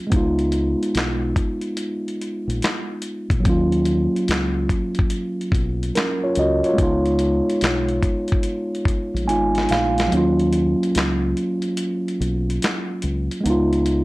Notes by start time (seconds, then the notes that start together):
0.07 G#3 B3
0.12 C#2 D#4, kick, closed hi-hat
0.16 F4
0.39 closed hi-hat
0.52 closed hi-hat
0.83 closed hi-hat
0.95 B1, snare, clap, closed hi-hat
1.36 kick, closed hi-hat
1.61 closed hi-hat
1.77 closed hi-hat
2.08 closed hi-hat
2.22 closed hi-hat
2.48 A#1, closed hi-hat
2.62 snare, clap, closed hi-hat
3.02 closed hi-hat
3.30 A#1, kick, closed hi-hat
3.40 F#3 A#3
3.45 D#2 C#4, kick, closed hi-hat
3.50 F4
3.72 closed hi-hat
3.85 closed hi-hat
4.16 closed hi-hat
4.28 C#2, snare, clap, closed hi-hat
4.69 kick, closed hi-hat
4.95 closed hi-hat
4.99 kick
5.10 closed hi-hat
5.41 closed hi-hat
5.52 B1, kick, closed hi-hat
5.83 closed hi-hat
5.95 C#4 A#4, snare, clap, closed hi-hat
6.24 F4 C#5
6.35 C#2 D#5, closed hi-hat
6.40 F#4
6.64 F4 C#5, closed hi-hat
6.73 G#3 B3
6.78 C#2 D#4, kick, closed hi-hat
6.83 F4
7.06 closed hi-hat
7.19 closed hi-hat
7.50 closed hi-hat
7.61 B1, snare, clap, closed hi-hat
7.89 closed hi-hat
8.03 kick, closed hi-hat
8.28 closed hi-hat
8.32 kick
8.43 closed hi-hat
8.75 closed hi-hat
8.85 kick, closed hi-hat
9.14 A#1, closed hi-hat
9.25 G#1 G#3 B3 D#4 G#5, closed hi-hat
9.30 F4
9.55 snare, closed hi-hat
9.69 A#1 F5, snare, closed hi-hat
9.98 snare, closed hi-hat
10.08 F#3 A#3
10.12 D#2 C#4, closed hi-hat
10.17 F4
10.39 closed hi-hat
10.53 closed hi-hat
10.83 closed hi-hat
10.95 C#2, snare, clap, closed hi-hat
11.37 closed hi-hat
11.62 closed hi-hat
11.77 closed hi-hat
12.08 closed hi-hat
12.20 B1, closed hi-hat
12.50 closed hi-hat
12.62 snare, clap, closed hi-hat
13.02 C#2, closed hi-hat
13.31 closed hi-hat
13.41 G#3 B3
13.45 C#2 D#4, closed hi-hat
13.50 F4
13.73 closed hi-hat
13.86 closed hi-hat